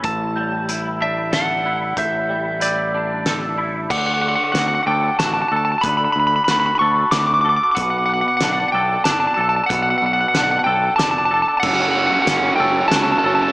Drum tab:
CC |------|------|x-----|------|
HH |x-x-x-|x-x-x-|--x-x-|x-x-x-|
SD |----o-|----o-|--o-o-|--o-o-|
BD |o-----|o-----|o-----|o-----|

CC |------|------|x-----|
HH |x-x-x-|x-x-x-|--x-x-|
SD |--o-o-|--o-o-|--o-o-|
BD |o-----|o-----|o-----|